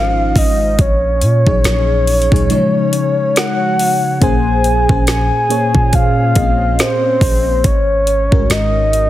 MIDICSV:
0, 0, Header, 1, 5, 480
1, 0, Start_track
1, 0, Tempo, 857143
1, 441, Time_signature, 4, 2, 24, 8
1, 5095, End_track
2, 0, Start_track
2, 0, Title_t, "Soft synth lead"
2, 0, Program_c, 0, 80
2, 0, Note_on_c, 0, 77, 120
2, 213, Note_on_c, 0, 75, 96
2, 221, Note_off_c, 0, 77, 0
2, 452, Note_on_c, 0, 73, 92
2, 461, Note_off_c, 0, 75, 0
2, 1886, Note_off_c, 0, 73, 0
2, 1893, Note_on_c, 0, 78, 120
2, 2344, Note_off_c, 0, 78, 0
2, 2370, Note_on_c, 0, 80, 113
2, 2823, Note_off_c, 0, 80, 0
2, 2850, Note_on_c, 0, 80, 112
2, 3331, Note_on_c, 0, 77, 121
2, 3340, Note_off_c, 0, 80, 0
2, 3812, Note_on_c, 0, 72, 102
2, 3820, Note_off_c, 0, 77, 0
2, 4290, Note_on_c, 0, 73, 101
2, 4299, Note_off_c, 0, 72, 0
2, 4770, Note_on_c, 0, 75, 96
2, 4778, Note_off_c, 0, 73, 0
2, 5095, Note_off_c, 0, 75, 0
2, 5095, End_track
3, 0, Start_track
3, 0, Title_t, "FM electric piano"
3, 0, Program_c, 1, 5
3, 0, Control_c, 1, 64, 127
3, 0, Note_on_c, 1, 44, 69
3, 0, Note_on_c, 1, 56, 61
3, 0, Note_on_c, 1, 61, 66
3, 0, Note_on_c, 1, 63, 62
3, 0, Note_on_c, 1, 65, 61
3, 0, Note_on_c, 1, 72, 85
3, 0, Note_on_c, 1, 75, 72
3, 368, Note_off_c, 1, 44, 0
3, 369, Note_off_c, 1, 56, 0
3, 370, Note_off_c, 1, 61, 0
3, 372, Note_off_c, 1, 63, 0
3, 373, Note_off_c, 1, 65, 0
3, 374, Note_off_c, 1, 75, 0
3, 449, Note_off_c, 1, 72, 0
3, 449, Control_c, 1, 64, 0
3, 556, Control_c, 1, 64, 127
3, 815, Note_on_c, 1, 46, 64
3, 818, Note_on_c, 1, 54, 60
3, 822, Note_on_c, 1, 63, 62
3, 825, Note_on_c, 1, 68, 63
3, 828, Note_on_c, 1, 73, 73
3, 1123, Note_off_c, 1, 46, 0
3, 1125, Note_off_c, 1, 54, 0
3, 1127, Note_off_c, 1, 63, 0
3, 1128, Note_off_c, 1, 68, 0
3, 1130, Note_off_c, 1, 73, 0
3, 1294, Note_on_c, 1, 46, 94
3, 1298, Note_on_c, 1, 54, 80
3, 1301, Note_on_c, 1, 63, 81
3, 1304, Note_on_c, 1, 68, 85
3, 1308, Note_on_c, 1, 73, 101
3, 1395, Note_off_c, 1, 63, 0
3, 1395, Note_on_c, 1, 49, 92
3, 1398, Note_off_c, 1, 46, 0
3, 1398, Note_on_c, 1, 56, 83
3, 1400, Note_off_c, 1, 54, 0
3, 1402, Note_off_c, 1, 73, 0
3, 1402, Note_on_c, 1, 63, 84
3, 1403, Note_off_c, 1, 68, 0
3, 1405, Note_on_c, 1, 53, 83
3, 1407, Control_c, 1, 64, 0
3, 1408, Note_on_c, 1, 73, 98
3, 1520, Control_c, 1, 64, 127
3, 2173, Note_off_c, 1, 49, 0
3, 2175, Note_off_c, 1, 56, 0
3, 2177, Note_off_c, 1, 63, 0
3, 2179, Note_off_c, 1, 53, 0
3, 2180, Note_off_c, 1, 73, 0
3, 2355, Note_on_c, 1, 46, 95
3, 2358, Note_on_c, 1, 58, 85
3, 2362, Note_on_c, 1, 61, 88
3, 2365, Note_on_c, 1, 68, 87
3, 2368, Control_c, 1, 64, 0
3, 2368, Note_on_c, 1, 72, 108
3, 2482, Control_c, 1, 64, 127
3, 2597, Note_off_c, 1, 46, 0
3, 2598, Note_off_c, 1, 58, 0
3, 2600, Note_off_c, 1, 61, 0
3, 2602, Note_off_c, 1, 68, 0
3, 2603, Note_off_c, 1, 72, 0
3, 2734, Note_on_c, 1, 46, 73
3, 2737, Note_on_c, 1, 58, 66
3, 2740, Note_on_c, 1, 61, 65
3, 2743, Note_on_c, 1, 68, 61
3, 2748, Note_on_c, 1, 72, 79
3, 2975, Note_off_c, 1, 46, 0
3, 2977, Note_off_c, 1, 58, 0
3, 2979, Note_off_c, 1, 61, 0
3, 2980, Note_off_c, 1, 68, 0
3, 2982, Note_off_c, 1, 72, 0
3, 3073, Note_on_c, 1, 46, 73
3, 3077, Note_on_c, 1, 58, 73
3, 3080, Note_on_c, 1, 61, 67
3, 3084, Note_on_c, 1, 68, 72
3, 3087, Note_on_c, 1, 73, 88
3, 3408, Note_off_c, 1, 46, 0
3, 3410, Note_off_c, 1, 58, 0
3, 3411, Note_off_c, 1, 61, 0
3, 3413, Note_off_c, 1, 68, 0
3, 3414, Note_off_c, 1, 73, 0
3, 3554, Note_on_c, 1, 46, 69
3, 3558, Note_on_c, 1, 58, 65
3, 3561, Note_on_c, 1, 60, 49
3, 3564, Note_on_c, 1, 68, 63
3, 3568, Note_on_c, 1, 75, 81
3, 3598, Note_on_c, 1, 61, 64
3, 3603, Note_off_c, 1, 60, 0
3, 4207, Note_off_c, 1, 46, 0
3, 4209, Note_off_c, 1, 58, 0
3, 4212, Note_off_c, 1, 68, 0
3, 4214, Note_off_c, 1, 75, 0
3, 4229, Note_off_c, 1, 61, 0
3, 4288, Control_c, 1, 64, 0
3, 4389, Control_c, 1, 64, 127
3, 4654, Note_on_c, 1, 44, 71
3, 4657, Note_on_c, 1, 56, 62
3, 4660, Note_on_c, 1, 61, 62
3, 4663, Note_on_c, 1, 66, 60
3, 4667, Note_on_c, 1, 70, 74
3, 4962, Note_off_c, 1, 44, 0
3, 4964, Note_off_c, 1, 56, 0
3, 4966, Note_off_c, 1, 61, 0
3, 4967, Note_off_c, 1, 66, 0
3, 4969, Note_off_c, 1, 70, 0
3, 5095, End_track
4, 0, Start_track
4, 0, Title_t, "808-style bass"
4, 0, Program_c, 2, 38
4, 0, Note_on_c, 2, 32, 97
4, 182, Note_off_c, 2, 32, 0
4, 199, Note_on_c, 2, 32, 104
4, 430, Note_off_c, 2, 32, 0
4, 441, Note_on_c, 2, 34, 101
4, 681, Note_on_c, 2, 46, 105
4, 689, Note_off_c, 2, 34, 0
4, 813, Note_off_c, 2, 46, 0
4, 821, Note_on_c, 2, 34, 99
4, 917, Note_off_c, 2, 34, 0
4, 921, Note_on_c, 2, 34, 105
4, 1285, Note_off_c, 2, 34, 0
4, 1298, Note_on_c, 2, 37, 101
4, 1396, Note_off_c, 2, 37, 0
4, 2361, Note_on_c, 2, 34, 109
4, 2725, Note_off_c, 2, 34, 0
4, 2740, Note_on_c, 2, 34, 104
4, 2971, Note_off_c, 2, 34, 0
4, 3218, Note_on_c, 2, 46, 98
4, 3546, Note_off_c, 2, 46, 0
4, 3562, Note_on_c, 2, 34, 104
4, 3791, Note_off_c, 2, 34, 0
4, 4039, Note_on_c, 2, 34, 102
4, 4270, Note_off_c, 2, 34, 0
4, 4280, Note_on_c, 2, 32, 110
4, 4644, Note_off_c, 2, 32, 0
4, 4660, Note_on_c, 2, 36, 105
4, 4757, Note_off_c, 2, 36, 0
4, 4760, Note_on_c, 2, 32, 103
4, 5095, Note_off_c, 2, 32, 0
4, 5095, End_track
5, 0, Start_track
5, 0, Title_t, "Drums"
5, 199, Note_on_c, 9, 36, 93
5, 204, Note_on_c, 9, 46, 76
5, 255, Note_off_c, 9, 36, 0
5, 260, Note_off_c, 9, 46, 0
5, 440, Note_on_c, 9, 42, 76
5, 441, Note_on_c, 9, 36, 119
5, 496, Note_off_c, 9, 42, 0
5, 497, Note_off_c, 9, 36, 0
5, 680, Note_on_c, 9, 42, 69
5, 736, Note_off_c, 9, 42, 0
5, 821, Note_on_c, 9, 36, 89
5, 877, Note_off_c, 9, 36, 0
5, 921, Note_on_c, 9, 42, 78
5, 926, Note_on_c, 9, 38, 113
5, 977, Note_off_c, 9, 42, 0
5, 982, Note_off_c, 9, 38, 0
5, 1162, Note_on_c, 9, 42, 52
5, 1164, Note_on_c, 9, 46, 49
5, 1218, Note_off_c, 9, 42, 0
5, 1220, Note_off_c, 9, 46, 0
5, 1242, Note_on_c, 9, 42, 54
5, 1298, Note_off_c, 9, 42, 0
5, 1298, Note_on_c, 9, 36, 90
5, 1321, Note_on_c, 9, 42, 53
5, 1354, Note_off_c, 9, 36, 0
5, 1377, Note_off_c, 9, 42, 0
5, 1400, Note_on_c, 9, 42, 74
5, 1456, Note_off_c, 9, 42, 0
5, 1640, Note_on_c, 9, 42, 79
5, 1696, Note_off_c, 9, 42, 0
5, 1882, Note_on_c, 9, 42, 63
5, 1888, Note_on_c, 9, 38, 115
5, 1938, Note_off_c, 9, 42, 0
5, 1944, Note_off_c, 9, 38, 0
5, 2125, Note_on_c, 9, 46, 74
5, 2181, Note_off_c, 9, 46, 0
5, 2361, Note_on_c, 9, 36, 113
5, 2361, Note_on_c, 9, 42, 74
5, 2417, Note_off_c, 9, 36, 0
5, 2417, Note_off_c, 9, 42, 0
5, 2600, Note_on_c, 9, 42, 64
5, 2656, Note_off_c, 9, 42, 0
5, 2740, Note_on_c, 9, 36, 92
5, 2796, Note_off_c, 9, 36, 0
5, 2840, Note_on_c, 9, 42, 81
5, 2844, Note_on_c, 9, 38, 108
5, 2896, Note_off_c, 9, 42, 0
5, 2900, Note_off_c, 9, 38, 0
5, 3083, Note_on_c, 9, 42, 60
5, 3139, Note_off_c, 9, 42, 0
5, 3218, Note_on_c, 9, 36, 90
5, 3274, Note_off_c, 9, 36, 0
5, 3319, Note_on_c, 9, 42, 77
5, 3321, Note_on_c, 9, 36, 99
5, 3375, Note_off_c, 9, 42, 0
5, 3377, Note_off_c, 9, 36, 0
5, 3559, Note_on_c, 9, 42, 79
5, 3562, Note_on_c, 9, 36, 105
5, 3615, Note_off_c, 9, 42, 0
5, 3618, Note_off_c, 9, 36, 0
5, 3802, Note_on_c, 9, 42, 62
5, 3808, Note_on_c, 9, 38, 110
5, 3858, Note_off_c, 9, 42, 0
5, 3864, Note_off_c, 9, 38, 0
5, 4039, Note_on_c, 9, 36, 97
5, 4044, Note_on_c, 9, 46, 77
5, 4095, Note_off_c, 9, 36, 0
5, 4100, Note_off_c, 9, 46, 0
5, 4280, Note_on_c, 9, 36, 114
5, 4280, Note_on_c, 9, 42, 79
5, 4336, Note_off_c, 9, 36, 0
5, 4336, Note_off_c, 9, 42, 0
5, 4520, Note_on_c, 9, 42, 66
5, 4576, Note_off_c, 9, 42, 0
5, 4660, Note_on_c, 9, 36, 92
5, 4716, Note_off_c, 9, 36, 0
5, 4759, Note_on_c, 9, 42, 81
5, 4764, Note_on_c, 9, 38, 110
5, 4815, Note_off_c, 9, 42, 0
5, 4820, Note_off_c, 9, 38, 0
5, 5002, Note_on_c, 9, 42, 61
5, 5058, Note_off_c, 9, 42, 0
5, 5095, End_track
0, 0, End_of_file